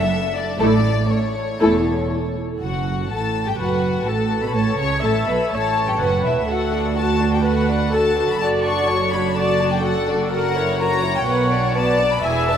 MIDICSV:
0, 0, Header, 1, 6, 480
1, 0, Start_track
1, 0, Key_signature, 2, "major"
1, 0, Tempo, 497925
1, 575, Time_signature, 4, 2, 24, 8
1, 3452, Tempo, 481155
1, 12424, End_track
2, 0, Start_track
2, 0, Title_t, "Violin section"
2, 0, Program_c, 0, 48
2, 0, Note_on_c, 0, 76, 75
2, 322, Note_off_c, 0, 76, 0
2, 330, Note_on_c, 0, 74, 70
2, 562, Note_off_c, 0, 74, 0
2, 573, Note_on_c, 0, 74, 85
2, 1051, Note_off_c, 0, 74, 0
2, 1054, Note_on_c, 0, 73, 65
2, 2268, Note_off_c, 0, 73, 0
2, 2505, Note_on_c, 0, 78, 51
2, 2946, Note_off_c, 0, 78, 0
2, 2981, Note_on_c, 0, 81, 62
2, 3327, Note_off_c, 0, 81, 0
2, 3335, Note_on_c, 0, 79, 55
2, 3445, Note_on_c, 0, 78, 52
2, 3452, Note_off_c, 0, 79, 0
2, 3922, Note_off_c, 0, 78, 0
2, 3926, Note_on_c, 0, 81, 57
2, 4290, Note_off_c, 0, 81, 0
2, 4291, Note_on_c, 0, 83, 55
2, 4406, Note_on_c, 0, 81, 56
2, 4413, Note_off_c, 0, 83, 0
2, 4647, Note_off_c, 0, 81, 0
2, 4649, Note_on_c, 0, 85, 63
2, 4889, Note_off_c, 0, 85, 0
2, 4889, Note_on_c, 0, 81, 62
2, 5132, Note_on_c, 0, 83, 55
2, 5134, Note_off_c, 0, 81, 0
2, 5371, Note_on_c, 0, 81, 63
2, 5375, Note_off_c, 0, 83, 0
2, 5728, Note_off_c, 0, 81, 0
2, 5739, Note_on_c, 0, 79, 56
2, 5856, Note_on_c, 0, 78, 61
2, 5859, Note_off_c, 0, 79, 0
2, 6099, Note_off_c, 0, 78, 0
2, 6105, Note_on_c, 0, 76, 55
2, 6340, Note_off_c, 0, 76, 0
2, 6340, Note_on_c, 0, 78, 69
2, 6825, Note_off_c, 0, 78, 0
2, 6825, Note_on_c, 0, 81, 69
2, 7178, Note_off_c, 0, 81, 0
2, 7192, Note_on_c, 0, 79, 63
2, 7306, Note_off_c, 0, 79, 0
2, 7309, Note_on_c, 0, 78, 64
2, 7775, Note_off_c, 0, 78, 0
2, 7784, Note_on_c, 0, 81, 72
2, 8141, Note_off_c, 0, 81, 0
2, 8148, Note_on_c, 0, 83, 67
2, 8256, Note_on_c, 0, 81, 74
2, 8263, Note_off_c, 0, 83, 0
2, 8336, Note_off_c, 0, 81, 0
2, 8494, Note_on_c, 0, 85, 78
2, 8964, Note_off_c, 0, 85, 0
2, 8975, Note_on_c, 0, 83, 62
2, 9215, Note_off_c, 0, 83, 0
2, 9219, Note_on_c, 0, 81, 72
2, 9576, Note_off_c, 0, 81, 0
2, 9581, Note_on_c, 0, 79, 63
2, 9695, Note_on_c, 0, 78, 75
2, 9697, Note_off_c, 0, 79, 0
2, 9935, Note_off_c, 0, 78, 0
2, 9938, Note_on_c, 0, 74, 62
2, 10174, Note_on_c, 0, 78, 75
2, 10176, Note_off_c, 0, 74, 0
2, 10643, Note_off_c, 0, 78, 0
2, 10654, Note_on_c, 0, 82, 82
2, 11006, Note_off_c, 0, 82, 0
2, 11016, Note_on_c, 0, 79, 73
2, 11129, Note_on_c, 0, 78, 65
2, 11133, Note_off_c, 0, 79, 0
2, 11607, Note_on_c, 0, 81, 78
2, 11610, Note_off_c, 0, 78, 0
2, 11963, Note_off_c, 0, 81, 0
2, 11973, Note_on_c, 0, 83, 63
2, 12088, Note_on_c, 0, 80, 73
2, 12093, Note_off_c, 0, 83, 0
2, 12331, Note_off_c, 0, 80, 0
2, 12332, Note_on_c, 0, 81, 72
2, 12424, Note_off_c, 0, 81, 0
2, 12424, End_track
3, 0, Start_track
3, 0, Title_t, "Viola section"
3, 0, Program_c, 1, 48
3, 574, Note_on_c, 1, 64, 59
3, 576, Note_on_c, 1, 57, 62
3, 801, Note_off_c, 1, 64, 0
3, 802, Note_off_c, 1, 57, 0
3, 1545, Note_on_c, 1, 57, 59
3, 1545, Note_on_c, 1, 64, 56
3, 1771, Note_off_c, 1, 57, 0
3, 1771, Note_off_c, 1, 64, 0
3, 3455, Note_on_c, 1, 71, 52
3, 3903, Note_off_c, 1, 71, 0
3, 3938, Note_on_c, 1, 69, 41
3, 4416, Note_off_c, 1, 69, 0
3, 4416, Note_on_c, 1, 73, 50
3, 4888, Note_off_c, 1, 73, 0
3, 4898, Note_on_c, 1, 76, 50
3, 5377, Note_on_c, 1, 73, 51
3, 5378, Note_off_c, 1, 76, 0
3, 5857, Note_on_c, 1, 71, 52
3, 5859, Note_off_c, 1, 73, 0
3, 6342, Note_off_c, 1, 71, 0
3, 6349, Note_on_c, 1, 69, 52
3, 6819, Note_off_c, 1, 69, 0
3, 6830, Note_on_c, 1, 66, 48
3, 7298, Note_off_c, 1, 66, 0
3, 7301, Note_on_c, 1, 71, 60
3, 7771, Note_off_c, 1, 71, 0
3, 7780, Note_on_c, 1, 69, 53
3, 8258, Note_off_c, 1, 69, 0
3, 8260, Note_on_c, 1, 74, 64
3, 8736, Note_off_c, 1, 74, 0
3, 8742, Note_on_c, 1, 73, 59
3, 9219, Note_off_c, 1, 73, 0
3, 9219, Note_on_c, 1, 74, 58
3, 9686, Note_off_c, 1, 74, 0
3, 9697, Note_on_c, 1, 69, 59
3, 10166, Note_off_c, 1, 69, 0
3, 10171, Note_on_c, 1, 70, 61
3, 10651, Note_off_c, 1, 70, 0
3, 10657, Note_on_c, 1, 73, 64
3, 11594, Note_off_c, 1, 73, 0
3, 11613, Note_on_c, 1, 74, 65
3, 12084, Note_on_c, 1, 76, 64
3, 12094, Note_off_c, 1, 74, 0
3, 12424, Note_off_c, 1, 76, 0
3, 12424, End_track
4, 0, Start_track
4, 0, Title_t, "Violin section"
4, 0, Program_c, 2, 48
4, 569, Note_on_c, 2, 69, 58
4, 572, Note_off_c, 2, 69, 0
4, 572, Note_on_c, 2, 69, 57
4, 800, Note_off_c, 2, 69, 0
4, 1543, Note_on_c, 2, 69, 58
4, 1544, Note_off_c, 2, 69, 0
4, 1544, Note_on_c, 2, 69, 58
4, 1770, Note_off_c, 2, 69, 0
4, 2514, Note_on_c, 2, 66, 51
4, 2951, Note_off_c, 2, 66, 0
4, 2988, Note_on_c, 2, 69, 51
4, 3331, Note_off_c, 2, 69, 0
4, 3336, Note_on_c, 2, 67, 45
4, 3452, Note_on_c, 2, 66, 55
4, 3453, Note_off_c, 2, 67, 0
4, 3925, Note_off_c, 2, 66, 0
4, 3936, Note_on_c, 2, 69, 49
4, 4286, Note_on_c, 2, 71, 50
4, 4295, Note_off_c, 2, 69, 0
4, 4410, Note_off_c, 2, 71, 0
4, 4410, Note_on_c, 2, 69, 55
4, 4653, Note_on_c, 2, 73, 58
4, 4654, Note_off_c, 2, 69, 0
4, 4891, Note_off_c, 2, 73, 0
4, 4895, Note_on_c, 2, 69, 56
4, 5131, Note_off_c, 2, 69, 0
4, 5133, Note_on_c, 2, 71, 48
4, 5371, Note_off_c, 2, 71, 0
4, 5380, Note_on_c, 2, 69, 58
4, 5733, Note_off_c, 2, 69, 0
4, 5733, Note_on_c, 2, 67, 51
4, 5782, Note_off_c, 2, 67, 0
4, 5858, Note_on_c, 2, 66, 50
4, 6095, Note_off_c, 2, 66, 0
4, 6095, Note_on_c, 2, 64, 50
4, 6175, Note_off_c, 2, 64, 0
4, 6347, Note_on_c, 2, 66, 46
4, 6350, Note_on_c, 2, 69, 46
4, 6570, Note_off_c, 2, 66, 0
4, 6572, Note_off_c, 2, 69, 0
4, 6592, Note_on_c, 2, 62, 43
4, 6595, Note_on_c, 2, 66, 41
4, 6817, Note_off_c, 2, 66, 0
4, 6829, Note_on_c, 2, 66, 42
4, 6829, Note_on_c, 2, 69, 46
4, 6830, Note_off_c, 2, 62, 0
4, 7060, Note_off_c, 2, 66, 0
4, 7067, Note_off_c, 2, 69, 0
4, 7069, Note_on_c, 2, 62, 41
4, 7072, Note_on_c, 2, 66, 39
4, 7303, Note_off_c, 2, 66, 0
4, 7307, Note_off_c, 2, 62, 0
4, 7312, Note_on_c, 2, 69, 43
4, 7315, Note_on_c, 2, 66, 49
4, 7531, Note_off_c, 2, 69, 0
4, 7533, Note_off_c, 2, 66, 0
4, 7550, Note_on_c, 2, 62, 46
4, 7555, Note_on_c, 2, 66, 43
4, 7776, Note_off_c, 2, 66, 0
4, 7785, Note_off_c, 2, 62, 0
4, 7788, Note_on_c, 2, 66, 39
4, 7788, Note_on_c, 2, 69, 39
4, 8010, Note_off_c, 2, 66, 0
4, 8020, Note_on_c, 2, 62, 43
4, 8022, Note_on_c, 2, 66, 43
4, 8024, Note_off_c, 2, 69, 0
4, 8255, Note_off_c, 2, 66, 0
4, 8258, Note_off_c, 2, 62, 0
4, 8267, Note_on_c, 2, 66, 47
4, 8268, Note_on_c, 2, 69, 49
4, 8484, Note_off_c, 2, 66, 0
4, 8485, Note_off_c, 2, 69, 0
4, 8496, Note_on_c, 2, 66, 50
4, 8497, Note_on_c, 2, 62, 47
4, 8726, Note_off_c, 2, 66, 0
4, 8736, Note_off_c, 2, 62, 0
4, 8736, Note_on_c, 2, 69, 46
4, 8737, Note_on_c, 2, 66, 45
4, 8967, Note_off_c, 2, 66, 0
4, 8976, Note_off_c, 2, 69, 0
4, 8979, Note_on_c, 2, 66, 47
4, 8981, Note_on_c, 2, 62, 42
4, 9201, Note_off_c, 2, 66, 0
4, 9213, Note_on_c, 2, 66, 51
4, 9217, Note_on_c, 2, 69, 51
4, 9218, Note_off_c, 2, 62, 0
4, 9436, Note_off_c, 2, 66, 0
4, 9438, Note_off_c, 2, 69, 0
4, 9456, Note_on_c, 2, 66, 46
4, 9458, Note_on_c, 2, 62, 45
4, 9679, Note_off_c, 2, 66, 0
4, 9691, Note_on_c, 2, 66, 43
4, 9691, Note_on_c, 2, 69, 43
4, 9695, Note_off_c, 2, 62, 0
4, 9924, Note_off_c, 2, 66, 0
4, 9933, Note_off_c, 2, 69, 0
4, 9936, Note_on_c, 2, 66, 46
4, 9937, Note_on_c, 2, 62, 45
4, 10157, Note_off_c, 2, 66, 0
4, 10169, Note_on_c, 2, 66, 53
4, 10170, Note_on_c, 2, 70, 52
4, 10175, Note_off_c, 2, 62, 0
4, 10394, Note_off_c, 2, 66, 0
4, 10394, Note_off_c, 2, 70, 0
4, 10403, Note_on_c, 2, 64, 47
4, 10407, Note_on_c, 2, 73, 54
4, 10642, Note_on_c, 2, 66, 47
4, 10646, Note_on_c, 2, 70, 47
4, 10648, Note_off_c, 2, 64, 0
4, 10649, Note_off_c, 2, 73, 0
4, 10886, Note_on_c, 2, 64, 41
4, 10887, Note_off_c, 2, 66, 0
4, 10888, Note_on_c, 2, 73, 40
4, 10889, Note_off_c, 2, 70, 0
4, 11123, Note_on_c, 2, 59, 49
4, 11125, Note_on_c, 2, 71, 55
4, 11128, Note_off_c, 2, 64, 0
4, 11129, Note_off_c, 2, 73, 0
4, 11349, Note_off_c, 2, 59, 0
4, 11350, Note_off_c, 2, 71, 0
4, 11364, Note_on_c, 2, 74, 49
4, 11365, Note_on_c, 2, 62, 49
4, 11607, Note_on_c, 2, 59, 44
4, 11608, Note_off_c, 2, 62, 0
4, 11608, Note_off_c, 2, 74, 0
4, 11608, Note_on_c, 2, 71, 42
4, 11845, Note_on_c, 2, 74, 46
4, 11847, Note_on_c, 2, 62, 44
4, 11850, Note_off_c, 2, 59, 0
4, 11850, Note_off_c, 2, 71, 0
4, 12086, Note_on_c, 2, 64, 53
4, 12089, Note_off_c, 2, 74, 0
4, 12089, Note_on_c, 2, 68, 53
4, 12090, Note_off_c, 2, 62, 0
4, 12313, Note_off_c, 2, 64, 0
4, 12314, Note_off_c, 2, 68, 0
4, 12329, Note_on_c, 2, 71, 49
4, 12330, Note_on_c, 2, 62, 49
4, 12424, Note_off_c, 2, 62, 0
4, 12424, Note_off_c, 2, 71, 0
4, 12424, End_track
5, 0, Start_track
5, 0, Title_t, "Cello section"
5, 0, Program_c, 3, 48
5, 577, Note_on_c, 3, 45, 67
5, 981, Note_off_c, 3, 45, 0
5, 1552, Note_on_c, 3, 40, 60
5, 1952, Note_off_c, 3, 40, 0
5, 2516, Note_on_c, 3, 42, 49
5, 2952, Note_off_c, 3, 42, 0
5, 2987, Note_on_c, 3, 45, 50
5, 3337, Note_off_c, 3, 45, 0
5, 3339, Note_on_c, 3, 43, 46
5, 3454, Note_off_c, 3, 43, 0
5, 3455, Note_on_c, 3, 42, 51
5, 3927, Note_off_c, 3, 42, 0
5, 3933, Note_on_c, 3, 45, 57
5, 4286, Note_off_c, 3, 45, 0
5, 4295, Note_on_c, 3, 47, 49
5, 4411, Note_on_c, 3, 45, 54
5, 4415, Note_off_c, 3, 47, 0
5, 4654, Note_off_c, 3, 45, 0
5, 4654, Note_on_c, 3, 49, 53
5, 4891, Note_off_c, 3, 49, 0
5, 4896, Note_on_c, 3, 45, 53
5, 5134, Note_on_c, 3, 47, 49
5, 5137, Note_off_c, 3, 45, 0
5, 5214, Note_off_c, 3, 47, 0
5, 5377, Note_on_c, 3, 45, 59
5, 5731, Note_off_c, 3, 45, 0
5, 5735, Note_on_c, 3, 43, 49
5, 5784, Note_off_c, 3, 43, 0
5, 5859, Note_on_c, 3, 42, 52
5, 6096, Note_off_c, 3, 42, 0
5, 6100, Note_on_c, 3, 40, 53
5, 6342, Note_on_c, 3, 38, 52
5, 6343, Note_off_c, 3, 40, 0
5, 8219, Note_off_c, 3, 38, 0
5, 8258, Note_on_c, 3, 42, 62
5, 11091, Note_off_c, 3, 42, 0
5, 11131, Note_on_c, 3, 47, 53
5, 12090, Note_on_c, 3, 40, 59
5, 12092, Note_off_c, 3, 47, 0
5, 12424, Note_off_c, 3, 40, 0
5, 12424, End_track
6, 0, Start_track
6, 0, Title_t, "Double bass section"
6, 0, Program_c, 4, 48
6, 575, Note_on_c, 4, 33, 65
6, 980, Note_off_c, 4, 33, 0
6, 1550, Note_on_c, 4, 28, 57
6, 1951, Note_off_c, 4, 28, 0
6, 2514, Note_on_c, 4, 30, 51
6, 2951, Note_off_c, 4, 30, 0
6, 2981, Note_on_c, 4, 33, 52
6, 3335, Note_off_c, 4, 33, 0
6, 3454, Note_on_c, 4, 30, 48
6, 3926, Note_off_c, 4, 30, 0
6, 3932, Note_on_c, 4, 33, 52
6, 4286, Note_off_c, 4, 33, 0
6, 4409, Note_on_c, 4, 33, 57
6, 4653, Note_off_c, 4, 33, 0
6, 4653, Note_on_c, 4, 37, 60
6, 4889, Note_on_c, 4, 33, 56
6, 4891, Note_off_c, 4, 37, 0
6, 5133, Note_off_c, 4, 33, 0
6, 5133, Note_on_c, 4, 35, 58
6, 5213, Note_off_c, 4, 35, 0
6, 5375, Note_on_c, 4, 33, 57
6, 5730, Note_off_c, 4, 33, 0
6, 5857, Note_on_c, 4, 30, 52
6, 6095, Note_off_c, 4, 30, 0
6, 6103, Note_on_c, 4, 28, 60
6, 6344, Note_off_c, 4, 28, 0
6, 6345, Note_on_c, 4, 38, 49
6, 8220, Note_off_c, 4, 38, 0
6, 8263, Note_on_c, 4, 30, 54
6, 11093, Note_off_c, 4, 30, 0
6, 11131, Note_on_c, 4, 35, 58
6, 12087, Note_on_c, 4, 28, 59
6, 12092, Note_off_c, 4, 35, 0
6, 12424, Note_off_c, 4, 28, 0
6, 12424, End_track
0, 0, End_of_file